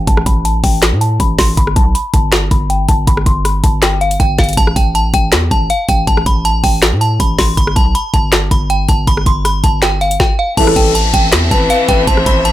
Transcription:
0.07 808-style bass A1, synth bell A5, kick, closed hi-hat
0.17 cross-stick
0.26 808-style bass A1, synth bell B5, kick, closed hi-hat
0.45 synth bell A5, closed hi-hat
0.64 808-style bass A1, synth bell G5, kick, open hi-hat
0.82 snare, clap, closed hi-hat
0.92 808-style bass A2
1.01 synth bell A5, closed hi-hat
1.20 808-style bass A1, synth bell B5, kick, closed hi-hat
1.38 808-style bass A1, synth bell C6, kick, snare, open hi-hat
1.57 808-style bass G1, synth bell B5, kick, closed hi-hat
1.67 cross-stick
1.76 808-style bass B1, synth bell A5, kick, closed hi-hat
1.95 synth bell B5, closed hi-hat
2.14 808-style bass G1, synth bell A5, kick, closed hi-hat
2.32 snare, clap, closed hi-hat
2.51 808-style bass G1, synth bell B5, kick, closed hi-hat
2.70 synth bell G5, closed hi-hat
2.88 808-style bass G1, synth bell A5, kick, closed hi-hat
3.07 808-style bass G1, synth bell B5, kick, closed hi-hat
3.17 cross-stick
3.26 808-style bass G1, synth bell C6, kick, closed hi-hat
3.45 synth bell B5, cross-stick, closed hi-hat
3.64 808-style bass G1, synth bell A5, kick, closed hi-hat
3.82 synth bell G5, snare, clap, closed hi-hat
4.01 synth bell F5, closed hi-hat
4.11 closed hi-hat
4.20 808-style bass G1, synth bell G5, kick, closed hi-hat
4.38 808-style bass G1, synth bell F5, kick, snare, closed hi-hat, open hi-hat
4.44 closed hi-hat
4.49 closed hi-hat
4.53 closed hi-hat
4.57 808-style bass A1, synth bell A5, kick, closed hi-hat
4.67 cross-stick
4.76 808-style bass A1, synth bell G5, kick, closed hi-hat
4.95 synth bell A5, closed hi-hat
5.14 808-style bass A1, synth bell G5, kick, closed hi-hat
5.32 808-style bass E2, snare, clap, closed hi-hat
5.51 808-style bass A1, synth bell A5, kick, closed hi-hat
5.70 synth bell F5, closed hi-hat
5.88 808-style bass A1, synth bell G5, kick, closed hi-hat
6.07 808-style bass A1, synth bell A5, kick, closed hi-hat
6.17 cross-stick
6.26 808-style bass A1, synth bell B5, kick, closed hi-hat
6.45 synth bell A5, closed hi-hat
6.64 808-style bass A1, synth bell G5, kick, open hi-hat
6.82 snare, clap, closed hi-hat
6.92 808-style bass A2
7.01 synth bell A5, closed hi-hat
7.20 808-style bass A1, synth bell B5, kick, closed hi-hat
7.38 808-style bass A1, synth bell C6, kick, snare, open hi-hat
7.57 808-style bass G1, synth bell B5, kick, closed hi-hat
7.67 cross-stick
7.76 808-style bass B1, synth bell A5, kick, closed hi-hat
7.95 synth bell B5, closed hi-hat
8.14 808-style bass G1, synth bell A5, kick, closed hi-hat
8.32 snare, clap, closed hi-hat
8.51 808-style bass G1, synth bell B5, kick, closed hi-hat
8.70 synth bell G5, closed hi-hat
8.88 808-style bass G1, synth bell A5, kick, closed hi-hat
9.07 808-style bass G1, synth bell B5, kick, closed hi-hat
9.17 cross-stick
9.26 808-style bass G1, synth bell C6, kick, closed hi-hat
9.45 synth bell B5, cross-stick, closed hi-hat
9.64 808-style bass G1, synth bell A5, kick, closed hi-hat
9.82 synth bell G5, snare, clap, closed hi-hat
10.01 synth bell F5, closed hi-hat
10.11 closed hi-hat
10.20 synth bell G5, kick, snare
10.39 synth bell F5
10.57 808-style bass A1, brass ensemble C2 A2 E3, string section E3 C4 A4 E5, soft synth lead A4, synth bell A5, kick, closed hi-hat, downlifter
10.67 cross-stick
10.76 808-style bass A1, synth bell G5, kick, closed hi-hat
10.95 synth bell A5, closed hi-hat
11.14 808-style bass A1, synth bell G5, kick, closed hi-hat
11.32 808-style bass E2, snare, clap, closed hi-hat
11.51 808-style bass A1, soft synth lead B4, synth bell A5, kick, closed hi-hat
11.70 synth bell F5, closed hi-hat
11.88 808-style bass A1, synth bell G5, kick, closed hi-hat
12.07 808-style bass A1, soft synth lead C5, synth bell A5, kick, closed hi-hat
12.17 cross-stick
12.26 808-style bass A1, synth bell B5, kick, closed hi-hat
12.45 synth bell A5, closed hi-hat

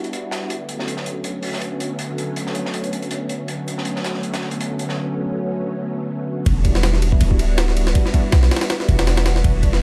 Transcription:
Already playing: string machine G3 B3 D4 E4 F#4
0.04 closed hi-hat
0.13 closed hi-hat
0.31 snare, closed hi-hat
0.50 string machine D3 F#3 A3 B3 C#4, closed hi-hat
0.69 closed hi-hat
0.79 snare
0.88 closed hi-hat
0.97 snare
1.06 closed hi-hat
1.24 closed hi-hat
1.43 open hi-hat
1.53 snare
1.61 closed hi-hat
1.80 closed hi-hat
1.99 closed hi-hat
2.18 closed hi-hat
2.36 closed hi-hat
2.47 snare
2.55 closed hi-hat
2.66 snare
2.74 closed hi-hat
2.84 closed hi-hat
2.93 closed hi-hat
3.02 closed hi-hat
3.11 closed hi-hat
3.29 closed hi-hat
3.48 string machine D3 F#3 A3 B3 C#4, closed hi-hat
3.68 closed hi-hat
3.78 snare
3.85 closed hi-hat
3.96 snare
4.04 snare, closed hi-hat
4.14 snare
4.23 closed hi-hat
4.34 snare, closed hi-hat
4.41 snare
4.51 closed hi-hat
4.61 closed hi-hat
4.79 closed hi-hat
4.89 snare
6.46 808-style bass E1, string machine G3 B3 D4 E4 F#4, kick, ride
6.65 kick, ride
6.75 snare
6.83 snare, ride
6.94 snare
7.02 string machine G3 B3 D4 E4 F#4, ride
7.12 kick
7.21 808-style bass D1, ride
7.31 kick
7.39 ride
7.58 snare, ride
7.68 snare
7.77 ride
7.87 snare
7.95 string machine G3 B3 D4 E4 F#4, kick, ride
8.06 snare
8.14 kick, ride
8.32 808-style bass B1, snare, ride
8.43 snare
8.51 string machine G3 B3 D4 E4 F#4, snare, ride
8.56 snare, ride
8.61 snare, ride
8.70 snare, ride
8.80 snare
8.88 808-style bass E1, kick, ride
8.99 snare, ride
9.07 snare, ride
9.17 snare, ride
9.26 snare, ride
9.36 snare
9.44 808-style bass E1, string machine G3 B3 D4 E4 F#4, kick, ride
9.63 kick, ride
9.73 snare

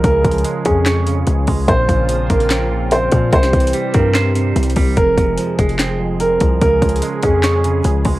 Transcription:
Already playing: analog synth pad F3 G#3 G#4
0.04 808-style bass C#2, clean electric guitar C#3, analog synth pad C#4, grand piano A#4, kick, closed hi-hat
0.24 808-style bass C#2, clean electric guitar F3, kick, closed hi-hat
0.31 closed hi-hat
0.38 closed hi-hat
0.44 clean electric guitar G#3, closed hi-hat
0.65 808-style bass F2, clean electric guitar C#4, grand piano G#4, kick, closed hi-hat
0.86 clean electric guitar C#5, snare, clap, closed hi-hat
1.07 clean electric guitar C#3, closed hi-hat
1.27 808-style bass C#2, closed hi-hat
1.47 808-style bass C#2, clean electric guitar G#3, kick, open hi-hat
1.68 808-style bass A#1, clean electric guitar A#2, analog synth pad C#3 A#3 C4 F4, grand piano C5, kick, closed hi-hat
1.89 808-style bass A#1, clean electric guitar C#3, kick, closed hi-hat
2.09 clean electric guitar F3, closed hi-hat
2.30 808-style bass A#1, clean electric guitar A#3, grand piano A#4, kick, closed hi-hat
2.40 closed hi-hat
2.50 clean electric guitar C4, snare, clap, closed hi-hat
2.71 clean electric guitar A#2
2.91 grand piano C5, closed hi-hat
3.12 808-style bass A#2, clean electric guitar F3, kick, closed hi-hat
3.33 808-style bass C2, clean electric guitar C3, analog synth pad E3 G3 G4, grand piano C5, kick, closed hi-hat
3.43 snare
3.53 808-style bass C2, clean electric guitar E3, kick, closed hi-hat
3.60 closed hi-hat
3.67 closed hi-hat
3.73 clean electric guitar G3, closed hi-hat
3.94 808-style bass G2, clean electric guitar C4, grand piano A#4, kick, closed hi-hat
4.15 clean electric guitar C5, snare, clap, closed hi-hat
4.35 clean electric guitar C3, closed hi-hat
4.56 808-style bass C2, closed hi-hat
4.63 closed hi-hat
4.70 closed hi-hat
4.76 808-style bass C2, clean electric guitar G3, kick, open hi-hat
4.97 808-style bass F1, clean electric guitar F2, analog synth pad F3 G#3 G#4, grand piano A#4, kick, closed hi-hat
5.18 808-style bass F1, clean electric guitar C3, kick, closed hi-hat
5.38 clean electric guitar F3, closed hi-hat
5.58 808-style bass F1, clean electric guitar G#3, grand piano G#4, kick, closed hi-hat
5.69 closed hi-hat
5.79 clean electric guitar C4, snare, clap, closed hi-hat
6.00 clean electric guitar F2
6.20 grand piano A#4, closed hi-hat
6.40 808-style bass C2, clean electric guitar F3, kick, closed hi-hat
6.61 808-style bass C#2, clean electric guitar C#3, analog synth pad G#3 C#4 G#4, grand piano A#4, kick, closed hi-hat
6.82 808-style bass C#2, clean electric guitar F3, kick, closed hi-hat
6.89 closed hi-hat
6.96 closed hi-hat
7.02 clean electric guitar G#3, closed hi-hat
7.23 808-style bass F2, clean electric guitar C#4, grand piano G#4, kick, closed hi-hat
7.43 clean electric guitar C#5, snare, clap, closed hi-hat
7.64 clean electric guitar C#3, closed hi-hat
7.84 808-style bass C#2, closed hi-hat
8.05 808-style bass C#2, clean electric guitar G#3, kick, open hi-hat

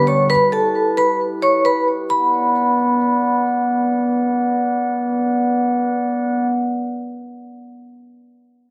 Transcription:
Already playing: grand piano D3 B3 G4, glass harmonica G3 G4 B4 D5
0.07 vibraphone C#5 C#6
0.30 glass harmonica E4, vibraphone B4 B5
0.52 vibraphone A4 A5
0.97 vibraphone B4 B5
1.42 vibraphone C#5 C#6
1.65 vibraphone B4 B5
2.10 glass harmonica B3 B4 D5 F#5, vibraphone B5

